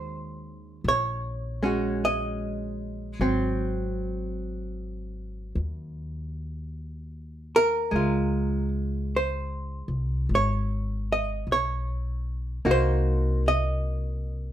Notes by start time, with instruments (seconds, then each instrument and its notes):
Already playing: upright bass D#2, hollow-body jazz guitar D#3 G#3 C#4 F#4 C5
0.84 upright bass A#1
0.88 hollow-body jazz guitar C#5
1.63 hollow-body jazz guitar G#3 C#4 F#4
2.05 hollow-body jazz guitar D#5
3.20 upright bass G#1, hollow-body jazz guitar F#3 C4
5.55 upright bass D#2
7.56 hollow-body jazz guitar A#4
7.91 upright bass C#2, hollow-body jazz guitar G#3
7.96 hollow-body jazz guitar F4
9.16 hollow-body jazz guitar C5
9.88 upright bass C2
10.29 upright bass G#1
10.35 hollow-body jazz guitar C#5
11.12 hollow-body jazz guitar D#5
11.47 upright bass B1
11.52 hollow-body jazz guitar C#5
12.65 upright bass C2, hollow-body jazz guitar A#3 D#4 F#4
12.71 hollow-body jazz guitar C5
13.48 hollow-body jazz guitar D#5